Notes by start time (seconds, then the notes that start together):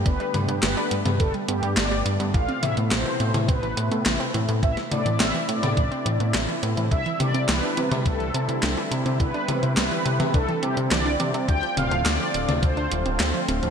Already playing: D3 A3 B3 G4
0.06 G1 D4 B4, kick, closed hi-hat
0.20 G3, closed hi-hat
0.34 G2, closed hi-hat, mid tom
0.48 G2 B3, closed hi-hat
0.63 G1 G3 B4, snare, clap, closed hi-hat
0.77 D4, closed hi-hat
0.91 G2 G3, closed hi-hat
1.06 G2 B3, closed hi-hat, mid tom
1.20 G1 A4, kick, closed hi-hat
1.34 G3, closed hi-hat
1.48 G2 B3 G4, closed hi-hat
1.63 G2 G3, closed hi-hat
1.77 G1 D4 D5, snare, clap, closed hi-hat
1.91 G3, closed hi-hat
2.06 G2, closed hi-hat
2.20 G2 B3, closed hi-hat
2.34 A1 B2 C3 E3 E4 F5, kick, closed hi-hat
2.49 C4, closed hi-hat
2.62 A2 E3 E5, closed hi-hat, mid tom
2.77 A2 B3, closed hi-hat
2.91 A1 C5, snare, clap, closed hi-hat
3.06 E3, closed hi-hat
3.20 A2 B3, closed hi-hat
3.34 A2 E3, closed hi-hat, mid tom
3.48 A1 C4 B4, kick, closed hi-hat
3.63 E3, closed hi-hat
3.77 A2, closed hi-hat
3.91 A2 B3, closed hi-hat
4.06 A1 E3, snare, clap, closed hi-hat
4.20 C4, closed hi-hat
4.34 A2 E3, closed hi-hat
4.48 A2 B3, closed hi-hat
4.63 A1 C4 E5, kick, closed hi-hat
4.77 E3, snare, closed hi-hat
4.91 A2 B3 D5, closed hi-hat, mid tom
5.05 A2 E3, closed hi-hat
5.20 A1 C4 E5, snare, clap, closed hi-hat
5.34 E3, closed hi-hat
5.48 A2 D5, closed hi-hat
5.63 A2 B3, closed hi-hat, mid tom
5.77 A1 E3, kick, closed hi-hat
5.91 C4, closed hi-hat
6.06 A2 E3, closed hi-hat
6.20 A2 B3, closed hi-hat
6.34 A1, snare, clap, closed hi-hat
6.48 E3, closed hi-hat
6.63 A2 B3, closed hi-hat
6.77 A2 E3, closed hi-hat
6.91 C2 D3 G3 D4 E5, kick, closed hi-hat
7.06 E3, closed hi-hat
7.20 C3 D5, closed hi-hat, mid tom
7.34 C3 C4, closed hi-hat
7.49 C2 E3 B4, snare, clap, closed hi-hat
7.63 D4, closed hi-hat
7.77 C3 E3, closed hi-hat
7.91 C3 C4, closed hi-hat, mid tom
8.06 C2 A4, kick, closed hi-hat
8.20 E3, closed hi-hat
8.34 C3 C4, closed hi-hat
8.48 C3 E3, closed hi-hat
8.63 C2 D4, snare, clap, closed hi-hat
8.77 E3, closed hi-hat
8.91 C3, closed hi-hat
9.06 C3 C4, closed hi-hat
9.20 C2 E3 B4, kick, closed hi-hat
9.34 D4, closed hi-hat
9.48 C3 E3, closed hi-hat, mid tom
9.63 C3 C4, closed hi-hat
9.77 C2 B4, snare, clap, closed hi-hat
9.91 E3, closed hi-hat
10.06 C3 C4, closed hi-hat
10.20 C3 E3, closed hi-hat, mid tom
10.34 C2 D4 A4, kick, closed hi-hat
10.48 E3, closed hi-hat
10.63 C3 G4, closed hi-hat
10.77 C3 C4, closed hi-hat
10.91 C2 E3 D5, snare, clap, closed hi-hat
11.06 D4, closed hi-hat
11.20 C3 E3, closed hi-hat
11.34 C3 C4, closed hi-hat
11.48 D2 A3 F4 G5, kick, closed hi-hat
11.63 F3, closed hi-hat
11.77 D1 C4 F5, closed hi-hat, mid tom
11.91 D1 F3, closed hi-hat
12.05 D2 D4 D5, snare, clap, closed hi-hat
12.20 F3, closed hi-hat
12.34 D1, closed hi-hat
12.49 D1 C4, closed hi-hat, mid tom
12.63 D2 F3 C5, kick, closed hi-hat
12.77 D4, closed hi-hat
12.91 D1 F3, closed hi-hat
13.06 D1 C4, closed hi-hat
13.20 D2, snare, clap, closed hi-hat
13.34 F3, closed hi-hat
13.48 D1 C4, closed hi-hat
13.63 D1 F3, closed hi-hat